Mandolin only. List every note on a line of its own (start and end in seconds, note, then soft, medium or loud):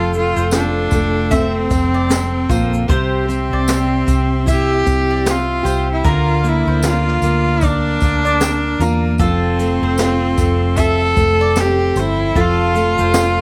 0.00 0.11 A4 medium
0.37 0.88 C5 medium
1.31 1.54 E5 medium
1.94 2.09 D5 medium
2.50 2.72 C5 medium
2.90 3.27 C5 loud
3.53 4.04 D5 medium
4.48 4.70 E5 medium
5.10 5.25 D5 medium
5.65 5.87 C5 medium
6.05 6.42 A#4 loud
6.68 7.19 C5 medium
7.63 7.85 D5 medium
8.25 8.40 D5 medium
8.80 9.03 A#4 medium
9.20 9.57 A4 medium
9.83 10.35 C5 medium
10.78 11.00 E5 medium
11.41 11.56 D5 medium
11.97 12.19 C5 medium
12.36 12.73 A4 loud
13.00 13.41 C5 medium